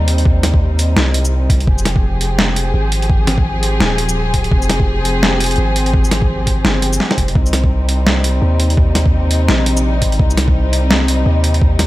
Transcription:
0.00 0.95 D#2 medium
0.00 1.64 C3 medium
0.00 1.64 G3 medium
0.00 1.64 C4 medium
0.00 1.64 D#4 medium
0.08 closed hi-hat medium
0.18 closed hi-hat soft
0.25 kick loud
0.43 snare medium
0.43 closed hi-hat medium
0.54 kick loud
0.79 closed hi-hat medium
0.79 shaker soft
0.96 1.49 C2 loud
0.96 snare loud
1.14 closed hi-hat medium
1.25 shaker medium
1.50 1.66 C2 loud
1.50 kick medium
1.50 closed hi-hat medium
1.60 closed hi-hat soft
1.67 2.73 F1 loud
1.67 7.32 F3 medium
1.67 11.87 C4 medium
1.67 7.31 G4 medium
1.67 7.32 G#4 loud
1.67 kick loud
1.78 shaker soft
1.85 snare medium
1.85 closed hi-hat medium
1.96 kick loud
2.21 closed hi-hat medium
2.39 snare loud
2.56 closed hi-hat medium
2.74 3.79 G#1 medium
2.92 closed hi-hat medium
3.02 closed hi-hat soft
3.10 kick loud
3.27 snare medium
3.27 closed hi-hat medium
3.38 kick loud
3.63 closed hi-hat medium
3.80 4.29 D#1 loud
3.80 snare loud
3.98 closed hi-hat medium
4.09 shaker medium
4.29 4.50 D1 loud
4.34 kick medium
4.34 closed hi-hat medium
4.44 closed hi-hat soft
4.52 5.57 F1 loud
4.52 kick loud
4.62 shaker soft
4.70 snare medium
4.70 closed hi-hat medium
4.80 kick loud
5.05 closed hi-hat medium
5.23 snare loud
5.40 closed hi-hat medium
5.44 closed hi-hat medium
5.46 closed hi-hat soft
5.51 closed hi-hat soft
5.56 6.63 G#1 medium
5.56 closed hi-hat soft
5.76 closed hi-hat medium
5.86 closed hi-hat soft
5.94 kick loud
6.04 shaker soft
6.11 snare medium
6.11 closed hi-hat medium
6.22 kick loud
6.47 kick medium
6.47 closed hi-hat medium
6.64 6.99 G1 loud
6.64 snare loud
6.82 closed hi-hat medium
6.93 shaker medium
7.00 snare medium
7.11 snare medium
7.18 7.34 F1 medium
7.18 kick medium
7.18 closed hi-hat medium
7.28 closed hi-hat soft
7.35 8.41 C2 loud
7.35 11.87 C3 medium
7.35 11.87 G3 medium
7.35 11.87 D#4 medium
7.35 kick loud
7.46 shaker soft
7.53 snare medium
7.53 closed hi-hat medium
7.64 kick loud
7.89 closed hi-hat medium
8.07 snare loud
8.24 closed hi-hat medium
8.42 9.47 D#2 medium
8.60 closed hi-hat medium
8.70 closed hi-hat soft
8.77 kick loud
8.95 snare medium
8.95 closed hi-hat medium
9.06 kick loud
9.31 closed hi-hat medium
9.48 9.97 A#1 loud
9.48 snare loud
9.66 closed hi-hat medium
9.77 shaker medium
9.97 10.18 A1 loud
10.02 kick medium
10.02 closed hi-hat medium
10.12 closed hi-hat soft
10.19 11.25 C2 loud
10.19 kick loud
10.30 shaker soft
10.38 snare medium
10.38 closed hi-hat medium
10.48 kick loud
10.73 closed hi-hat medium
10.91 snare loud
11.08 closed hi-hat medium
11.26 11.87 D#2 medium
11.44 closed hi-hat medium
11.54 closed hi-hat soft
11.62 kick loud
11.79 snare medium
11.79 closed hi-hat medium

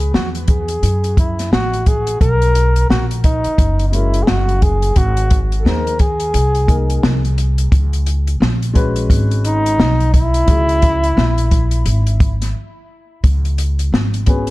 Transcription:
0.00 0.10 C#2 loud
0.00 0.11 G#4 medium
0.00 closed hi-hat soft
0.14 0.79 E2 medium
0.14 0.30 F#4 medium
0.14 snare loud
0.35 closed hi-hat medium
0.48 1.14 G#4 medium
0.48 kick medium
0.48 closed hi-hat medium
0.68 closed hi-hat medium
0.83 1.48 F#2 medium
0.83 closed hi-hat medium
1.04 closed hi-hat soft
1.17 1.50 E4 medium
1.17 kick medium
1.17 closed hi-hat medium
1.39 snare soft
1.39 closed hi-hat soft
1.52 2.17 A1 medium
1.52 1.89 F#4 loud
1.52 snare loud
1.73 closed hi-hat soft
1.86 2.21 G#4 loud
1.86 kick medium
1.86 closed hi-hat medium
2.07 closed hi-hat medium
2.21 2.86 B1 loud
2.21 2.86 A#4 loud
2.21 kick medium
2.21 closed hi-hat medium
2.42 closed hi-hat medium
2.55 closed hi-hat medium
2.76 closed hi-hat medium
2.90 3.42 A#1 medium
2.90 3.06 F#4 medium
2.90 snare medium
3.11 closed hi-hat medium
3.24 3.84 D#4 medium
3.24 kick medium
3.24 closed hi-hat medium
3.44 muted upright bass stroke soft
3.44 closed hi-hat medium
3.58 4.24 F#1 medium
3.58 kick medium
3.58 closed hi-hat medium
3.79 closed hi-hat soft
3.89 4.19 G#3 medium
3.89 3.95 D#4 medium
3.93 4.19 C#4 medium
3.93 4.25 E4 medium
3.93 4.20 F#4 medium
3.93 4.20 A#4 medium
3.93 closed hi-hat medium
4.14 closed hi-hat medium
4.23 4.30 G#4 medium
4.27 4.93 F#1 medium
4.27 4.64 F#4 loud
4.27 snare loud
4.49 closed hi-hat soft
4.62 4.99 G#4 medium
4.62 kick medium
4.62 closed hi-hat medium
4.82 closed hi-hat medium
4.96 5.62 G#1 loud
4.96 5.40 F#4 loud
4.96 kick loud
4.96 closed hi-hat medium
5.17 closed hi-hat soft
5.31 kick medium
5.31 closed hi-hat medium
5.52 closed hi-hat soft
5.60 5.68 A4 medium
5.64 6.31 D#2 medium
5.64 5.91 A#3 medium
5.64 5.92 D#4 medium
5.64 5.92 G#4 medium
5.64 6.02 A#4 loud
5.64 5.92 C5 medium
5.64 snare medium
5.87 closed hi-hat medium
5.99 7.38 G#4 medium
5.99 kick medium
5.99 closed hi-hat medium
6.20 closed hi-hat medium
6.34 7.00 C2 medium
6.34 closed hi-hat medium
6.55 closed hi-hat soft
6.67 7.19 A#3 medium
6.67 7.20 D#4 medium
6.67 7.20 G#4 medium
6.67 7.20 A#4 medium
6.67 kick medium
6.67 closed hi-hat medium
6.90 closed hi-hat medium
7.03 7.69 C2 medium
7.03 snare loud
7.25 closed hi-hat soft
7.38 closed hi-hat medium
7.58 closed hi-hat medium
7.72 8.37 C#2 medium
7.72 kick loud
7.72 closed hi-hat medium
7.93 closed hi-hat medium
8.06 closed hi-hat medium
8.27 closed hi-hat medium
8.40 9.06 A#1 medium
8.40 snare loud
8.62 closed hi-hat soft
8.74 9.73 G#3 medium
8.74 9.73 C#4 medium
8.74 9.73 F#4 medium
8.74 9.74 B4 loud
8.74 kick medium
8.74 closed hi-hat medium
8.96 closed hi-hat medium
9.10 9.75 G#1 medium
9.10 kick medium
9.10 closed hi-hat medium
9.31 closed hi-hat soft
9.45 10.10 D#4 loud
9.45 closed hi-hat medium
9.66 closed hi-hat medium
9.79 10.44 B1 medium
9.79 snare loud
10.00 closed hi-hat soft
10.14 12.51 E4 loud
10.14 kick medium
10.14 closed hi-hat medium
10.34 closed hi-hat medium
10.46 11.13 C#2 loud
10.46 10.98 G#3 medium
10.46 10.99 C#4 medium
10.46 10.99 F#4 medium
10.46 11.00 G#4 medium
10.46 kick loud
10.46 closed hi-hat medium
10.69 closed hi-hat soft
10.82 kick medium
10.82 closed hi-hat medium
11.04 closed hi-hat soft
11.17 11.82 A#1 loud
11.17 snare medium
11.38 closed hi-hat medium
11.51 kick medium
11.51 closed hi-hat medium
11.71 closed hi-hat medium
11.86 12.51 G#1 medium
11.86 closed hi-hat medium
12.07 closed hi-hat soft
12.20 kick loud
12.20 closed hi-hat medium
12.42 snare soft
12.42 closed hi-hat medium
13.24 13.89 C#2 loud
13.24 kick loud
13.24 closed hi-hat medium
13.45 closed hi-hat soft
13.58 closed hi-hat medium
13.79 closed hi-hat medium
13.92 14.50 G#1 medium
13.92 snare loud
14.14 closed hi-hat medium
14.26 14.50 B3 medium
14.26 14.50 C#4 medium
14.26 14.50 F#4 medium
14.26 14.50 G#4 medium
14.26 14.50 B4 medium
14.26 kick medium
14.26 closed hi-hat medium
14.47 closed hi-hat medium

